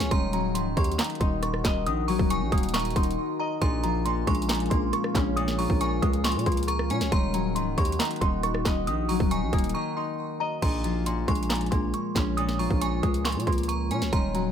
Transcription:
Already playing: A#2 F3 G#3 A#3 C#4 G#5
0.00 C#2, snare, closed hi-hat
0.11 D#1 D#3 D#4 F#4 A#4 F#5 A#5 C6, kick, closed hi-hat
0.33 F#3 A#5, closed hi-hat
0.55 C#1 D#3 C6, closed hi-hat
0.77 D#2 A#3 C6 C#6, kick, closed hi-hat
0.84 closed hi-hat
0.92 closed hi-hat
0.99 D#3 A#5, snare, clap, closed hi-hat
1.04 closed hi-hat
1.10 closed hi-hat
1.15 closed hi-hat
1.20 D#1 D#4 C6, kick, closed hi-hat
1.43 C#6, cross-stick, closed hi-hat
1.54 cross-stick
1.65 D#1 D#5, kick, snare, clap, closed hi-hat
1.86 A#1 D#3 D#6, closed hi-hat
2.08 F#3 A#5 C#6, open hi-hat
2.19 D#1, kick
2.30 D#3 G#5 C#6, closed hi-hat
2.41 A#1
2.52 D#1 A#3 D#6, kick, closed hi-hat
2.58 closed hi-hat
2.63 closed hi-hat
2.69 closed hi-hat
2.74 D#3 A#5 C#6, snare, clap, closed hi-hat
2.80 closed hi-hat
2.85 closed hi-hat
2.91 closed hi-hat
2.96 D#1 D#4 C6, kick, closed hi-hat
3.03 closed hi-hat
3.11 closed hi-hat
3.40 D#5 A#5
3.62 A#1 A#2 C#4 G#4 F5 A#5 C6, kick, closed hi-hat
3.84 F3 A#5, closed hi-hat
4.06 A#2 C6, closed hi-hat
4.27 A#1 G#3 C6 C#6, kick, closed hi-hat
4.35 closed hi-hat
4.42 closed hi-hat
4.49 A#2 A#5, snare, clap, closed hi-hat
4.55 closed hi-hat
4.60 closed hi-hat
4.66 closed hi-hat
4.70 A#1 A#3 C6, kick, closed hi-hat
4.93 C#6, cross-stick, closed hi-hat
5.04 cross-stick
5.15 A#1 C#4, kick, snare, clap, closed hi-hat
5.37 A#2 D#6, closed hi-hat
5.48 snare
5.58 F3 A#5 C#6, open hi-hat
5.70 A#1, kick
5.81 A#2 G#5 C#6, closed hi-hat
6.02 C#2 G#3 D#6, kick, closed hi-hat
6.13 closed hi-hat
6.24 A#2 C6 C#6, snare, clap, closed hi-hat
6.32 A#2, closed hi-hat
6.39 closed hi-hat
6.46 C#2 A#3 C6, kick, closed hi-hat
6.52 closed hi-hat
6.57 closed hi-hat
6.63 closed hi-hat
6.68 A#5 C#6, cross-stick, closed hi-hat
6.79 cross-stick
6.90 A#2 C#4 G#5, closed hi-hat
7.01 C#2, snare, closed hi-hat
7.12 D#1 D#3 D#4 F#4 F#5 A#5 C6, kick, closed hi-hat
7.33 F#3 A#5, closed hi-hat
7.55 C#1 D#3 C6, closed hi-hat
7.77 D#2 A#3 C6 C#6, kick, closed hi-hat
7.85 closed hi-hat
7.92 closed hi-hat
8.00 D#3 A#5, snare, clap, closed hi-hat
8.05 closed hi-hat
8.11 closed hi-hat
8.16 closed hi-hat
8.21 D#1 D#4 C6, kick, closed hi-hat
8.43 C#6, cross-stick, closed hi-hat
8.54 cross-stick
8.65 D#1 D#5, kick, snare, clap, closed hi-hat
8.87 A#1 D#3 D#6, closed hi-hat
9.09 F#3 A#5 C#6, open hi-hat
9.20 D#1, kick
9.31 D#3 G#5 C#6, closed hi-hat
9.42 A#1
9.53 D#1 A#3 D#6, kick, closed hi-hat
9.58 closed hi-hat
9.64 closed hi-hat
9.69 closed hi-hat
9.74 D#3 A#5 C#6
9.97 D#4 C6
10.40 D#5 A#5
10.62 A#1 A#2 A#5 C6, kick, closed hi-hat, crash
10.84 F3 A#5, closed hi-hat
11.06 A#2 C6, closed hi-hat
11.28 A#1 G#3 C6 C#6, kick, closed hi-hat
11.35 closed hi-hat
11.43 closed hi-hat
11.50 A#2 A#5, snare, clap, closed hi-hat
11.55 closed hi-hat
11.61 closed hi-hat
11.66 closed hi-hat
11.71 A#1 A#3 C6, kick, closed hi-hat
11.94 C#6, closed hi-hat
12.16 A#1 C#4, kick, snare, clap, closed hi-hat
12.37 A#2 D#6, closed hi-hat
12.49 snare
12.59 F3 A#5 C#6, open hi-hat
12.70 A#1, kick
12.81 A#2 G#5 C#6, closed hi-hat
13.03 C#2 G#3 D#6, kick, closed hi-hat
13.14 closed hi-hat
13.25 A#2 C6 C#6, snare, clap, closed hi-hat
13.32 A#2, closed hi-hat
13.40 closed hi-hat
13.47 C#2 A#3 C6, kick, closed hi-hat
13.53 closed hi-hat
13.58 closed hi-hat
13.63 closed hi-hat
13.68 A#5 C#6, closed hi-hat
13.91 A#2 C#4 G#5, closed hi-hat
14.02 C#2, snare, closed hi-hat
14.13 D#1 D#3 A#5 C6, kick, closed hi-hat
14.34 F#3 A#5, closed hi-hat

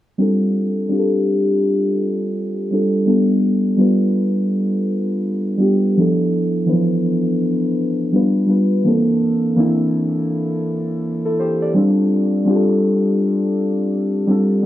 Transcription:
0.17 G3 C4 D4 F4 A4
0.88 G3 C4 D4 F4
0.92 G4
0.99 A4
2.70 G3 C4 D4 F4 A4
3.05 G3 B3 D4 F4 A4
3.77 G3 B3 D4 F4 B4
5.57 G3 B3 D4 F4 G4
5.97 F3 B3 D4 E4 A4
6.66 E3 B3 D4 E4 B4
6.72 F3
8.12 G3 B3 D4 F4 B4
8.46 G3 B3 D4 F4
8.50 B4
8.84 E3 A#3 C4 D4
8.88 A4
9.56 E3 A#3 C4 D4 E4
11.25 E4 A4
11.39 G4 C5
11.62 A4 D5
11.74 G3 C4 D4 F4 A4
12.45 G3 C4 D4 F4
12.49 G4
12.55 A4
14.27 G3 C4 D4 F4 A4
14.62 G3

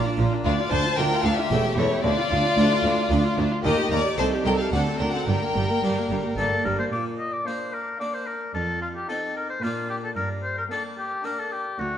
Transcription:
Already playing: A#2 A#3 D4 F4 D5 A#5
0.06 D4
0.17 A#1 A#2 F4
0.33 D4
0.44 D2 D4 F4 D5
0.59 F4
0.71 D2 D4 C5 A5
0.85 F4
0.97 D2 A3 D4 F4 A#4 G5
1.12 F4
1.24 D2 D4 A4 F5
1.37 F4 G4 E5
1.51 E1 E2 A3 C#4 G4 A4
1.65 G4
1.77 E1 E2 E4 A4 C#5
1.91 G4
2.04 D2 D4 F4 D5
2.18 F4
2.31 D2 D4
2.45 F4
2.57 D2 A3 D4 F4
2.71 F4
2.84 D2 D4
2.99 F4
3.10 D2 A3 D4 F4
3.25 F4
3.38 D2 D4
3.52 F4
3.64 D#2 A#3 D#4 G4 A#4 D#5
3.78 G4
3.91 D#2 A#4 D5 A#5
4.05 G4
4.18 C2 A3 C4 D#4 A4 C5 A5
4.32 G4
4.44 C2 A4 A#4 G5
4.59 G4 A4 F5
4.72 D2 A3 C4 D4 A4 F#5
4.87 C4
4.99 D2 D4 A#4 G5
5.13 C4 A4 F#5
5.27 G1 G2 G3 A#4 G5
5.43 A#3
5.54 G1 G2 G3
5.70 A#3
5.82 G1 G2 G3 A#3 D4
5.97 A#3
6.09 G1 G2 G3
6.24 A#3
6.37 G1 G2 G3 A#3 D4 A4
6.52 A#3
6.64 G1 G2 G3 A#4
6.79 A#3 C5
6.92 A#2 D5
7.19 D#5
7.32 D5
7.46 A#3 D4 C5 F5
7.73 A#4
8.00 A#3 D4 D5 F5
8.14 C5
8.27 A#4
8.54 F2 A4
8.82 F4
8.95 G4
9.08 C4 D#4 A4 F5
9.37 A#4
9.50 C5
9.62 A#2 A#3 D4 F4 F5
9.89 G4
10.04 A4
10.16 G2 A#4
10.43 C5
10.58 A#4
10.70 A#3 D4 A4 G5
10.98 G4
11.24 A#3 D4 A#4 G5
11.39 A4
11.52 G4
11.79 D2 F#4

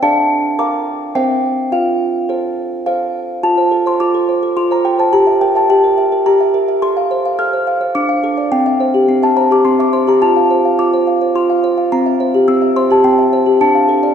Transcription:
0.02 D4 A4 D5 F5 A5
0.59 A#4 F5 A#5 D6
1.15 C4 A#4 C5 E5 G5
1.72 F4 F5
2.29 A4 C5
2.86 A4 C5 F5
3.43 F4 A5
3.58 C5
3.71 A4
3.86 C5 C6
4.00 F4 D6
4.14 A4
4.29 C5
4.43 A4
4.57 F4 C6
4.71 C5 A#5
4.85 A4 G5
4.99 C5 A5
5.13 G4 A#5
5.27 E5
5.41 A#4 G5
5.55 E5 A5
5.70 G4 G5
5.84 A#4
5.98 E5
6.12 A#4
6.26 G4 A#5
6.41 E5
6.54 A#4
6.68 E5
6.82 A4 C6
6.97 F5
7.11 C5
7.25 F5
7.39 A4 F6
7.53 C5
7.67 F5
7.81 C5
7.95 D4 D6
8.09 F5
8.24 A4
8.38 D5
8.52 C4 G5
8.66 E5
8.80 C5
8.94 G4
9.09 C4
9.23 E5 A5
9.37 C5 A#5
9.51 G4 D6
9.65 C4 C6
9.79 E5 D6
9.93 C5 C6
10.07 G4 A#5
10.22 F4 A5
10.36 F5
10.50 C5
10.65 F5
10.79 F4 D6
10.94 C5
11.07 F5
11.21 C5
11.35 F4 C6
11.50 F5
11.64 C5
11.78 F5
11.92 C4 A#5
12.06 E5
12.20 C5
12.34 G4
12.48 C4 E6
12.62 E5
12.76 C5 C6
12.91 G4 A5
13.04 C4 G5
13.19 E5
13.33 C5
13.46 G4
13.61 D4 A5
13.75 F5
13.89 A4
14.03 D5

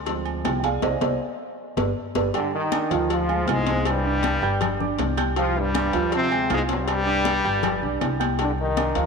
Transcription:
Already playing: D2
0.06 F3 G#3 C4, cowbell, high conga, low agogo
0.26 high conga, low agogo
0.45 C2 G4 G5, cowbell, high conga, low timbale, low agogo
0.60 G5, high conga
0.64 G#4 D5 F5 G#5, cowbell
0.82 C2 C5 D5 D#5, cowbell, high conga, high timbale
1.01 C2 C5 D5 D#5, cowbell, high conga, high timbale
1.77 G1 G4 B4 D5, cowbell, high conga, high timbale
2.15 G1 G4 B4 D5, cowbell, high conga, high timbale
2.34 D3 G3 D4 G4 G5, cowbell, low agogo
2.53 D#3 D#4, high conga
2.72 D4 D5 D6, cowbell, high conga, low timbale, low agogo
2.91 D2 F3 F4 F5, cowbell, high conga
3.10 F3 F4, cowbell, high conga, low agogo
3.29 G#3 G#4 G#5, high conga, low agogo
3.47 C2 G#2 G#3 F4 F5 F6, cowbell, high conga, low timbale, low agogo
3.66 C4 C5 C6, cowbell, high conga
3.85 G2 G3, cowbell, high conga, low agogo
4.05 D4 D5 D6, high conga
4.23 cowbell, high conga, low timbale, low agogo
4.42 G1 G4 G5 G6, high conga
4.61 cowbell, high conga, low conga, low agogo
4.80 D4 D5 D6, high conga, low conga
4.99 C2, cowbell, high conga, low timbale, low agogo
5.17 G4 G5 G6, cowbell, high conga, low agogo
5.36 F3 G3 F4 G4 G5, cowbell, low agogo
5.56 G2 G3, high conga
5.74 D4 D5 D6, cowbell, high conga, low timbale, low agogo
5.93 D2 F3 F4 F5, cowbell, high conga
6.12 C3 C4, cowbell, high conga, low agogo
6.31 G#3 G#4 G#5, high conga, low agogo
6.50 C2 G#2 G#3 F4 F5 F6, cowbell, high conga, low timbale, low agogo
6.69 G2 G3 C4 C5 C6, cowbell, high conga
6.88 cowbell, high conga, low agogo
7.06 D4 D5 D6, high conga
7.25 cowbell, high conga, low timbale, low agogo
7.44 G1 G4 G5 G6, high conga
7.63 cowbell, high conga, low conga, low agogo
7.82 B1 D4 D5 D6, high conga
8.01 C2, cowbell, high conga, low timbale, low agogo
8.20 G4 G5 G6, cowbell, high conga, low agogo
8.38 G3 D4 G4 G5, cowbell, low agogo
8.43 D3
8.58 D#3 D#4, high conga
8.77 D4 D5 D6, cowbell, high conga, low timbale, low agogo
8.95 D2 F3 F4 F5, cowbell, high conga

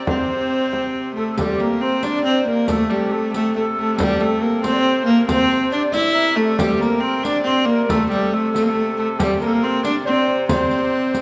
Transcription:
Already playing: C3 G4 A#4 D5
0.07 C4 C5, frame drum
0.29 frame drum
0.73 frame drum
0.95 frame drum
1.16 A3 A4, frame drum
1.31 A4
1.37 C3 G3 G4, riq, frame drum
1.60 A#3 A#4, riq
1.81 C4 C5
2.03 D4 D5, riq, frame drum
2.25 C4 C5, frame drum
2.47 A#3 A#4, frame drum
2.67 A3 A4, riq, frame drum
2.89 G3 G4, riq
3.11 A3 A4
3.34 A3 A4, riq, frame drum
3.56 A3 A4, frame drum
3.77 A3 A4, frame drum
3.98 G3 G4, riq, frame drum
4.20 A3 A4, riq
4.41 A#3 A#4
4.63 C4 C5, riq, frame drum
4.73 D5
4.80 C5
4.87 frame drum
5.06 A#3, frame drum
5.10 A#4
5.28 C4 C5, riq, frame drum
5.51 riq
5.71 D4 D5, riq
5.93 E4 E5, riq, frame drum
6.14 A#4
6.36 A3 A4, riq
6.58 C3 G3 G4, riq, frame drum
6.79 A#3 A#4, riq
7.01 C4 C5
7.23 D4 D5, riq, frame drum
7.44 C4 C5, frame drum
7.65 A#3 A#4, frame drum
7.70 A#4
7.89 A3 A4, riq, frame drum
8.10 G3 G4, riq
8.33 A3 A4
8.53 A3 A4, riq, frame drum
8.63 A#3 A4
8.69 A3 A4
8.76 frame drum
8.98 A3 A4, frame drum
9.19 G3 G4, riq, frame drum
9.40 A#3 A#4, riq
9.47 A4
9.53 A#4
9.62 C4 C5
9.84 D4 D5, riq, frame drum
10.06 C4 C5, frame drum
10.13 D5
10.19 C5
10.28 D5, frame drum
10.48 C4 C5, riq, frame drum
10.71 riq
11.14 riq, frame drum

